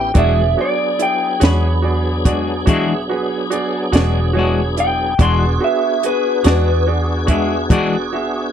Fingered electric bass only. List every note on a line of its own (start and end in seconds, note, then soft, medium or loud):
0.00 0.12 A1 medium
0.16 0.54 E1 medium
1.42 2.67 E2 medium
2.67 3.89 E1 medium
3.93 5.15 E1 medium
5.19 5.57 E1 medium
6.45 7.70 E2 medium
7.70 8.52 E1 medium